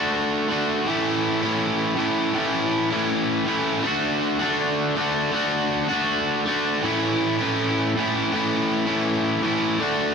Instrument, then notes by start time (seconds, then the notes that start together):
overdriven electric guitar
Already playing: D3 A3 D4 F#4
0.48 D3 A3 D4
0.52 F#4
0.85 A2 E3 A3 C#4 E4
1.42 A2 E3 A3 C#4 E4
1.96 A2 E3 A3 C#4
2.00 E4
2.34 A2 E3 A3 C#4
2.38 E4
2.90 A2 E3 A3 C#4 E4
3.45 A2 E3 A3 C#4
3.49 E4
3.83 D3 A3 D4
3.88 F#4
4.39 D4 F#4
4.43 D3 A3
4.96 D3 A3 D4
5.01 F#4
5.32 D3 A3 D4
5.36 F#4
5.88 A3 D4 F#4
5.93 D3
6.45 D3 A3 D4
6.50 F#4
6.82 A2 E3 A3 C#4
6.87 E4
7.38 E3 A3 C#4 E4
7.43 A2
7.96 A2 E3 A3 C#4
8.00 E4
8.32 A2 E3 A3 C#4
8.36 E4
8.86 A2 E3 A3 C#4 E4
9.42 A2 E3 A3 C#4 E4
9.79 D3 A3 D4
9.84 F#4